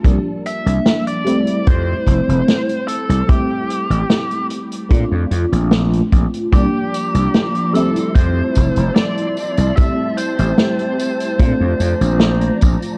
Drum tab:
HH |x-xxxxxxx-xxxxxx|x-xxxxxxx-xxxxxx|x-xxxxxxx-xxxxxx|x-xxxxxxx-xxxxxx|
TB |----------------|----------------|x-xxx-xxx-xxx-xx|x-xxx-xxx-xxx-xx|
SD |----o-------o---|----o-------o---|----o-------o---|----o-------o---|
BD |o-------o-o-----|o-------o-----o-|o-------o-o-----|o-------o-----o-|